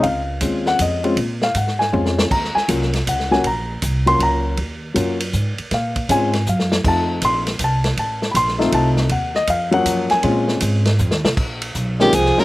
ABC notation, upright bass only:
X:1
M:3/4
L:1/8
Q:"Swing" 1/4=159
K:Bbm
V:1 name="Upright bass" clef=bass
D,,2 E,,2 F,,2 | B,,2 A,,2 F,,2 | E,, z C,,2 D,,2 | B,,,2 C,,2 D,,2 |
E,,2 G,,2 A,, z | B,,2 A,,2 G,,2 | F,,2 B,,,2 C,,2 | =A,,,2 B,,,2 C,,2 |
E,,2 F,,2 G,, z | B,,2 A,,2 (3F,, E,, C,, | B,,,2 _C,,2 =C,, z |]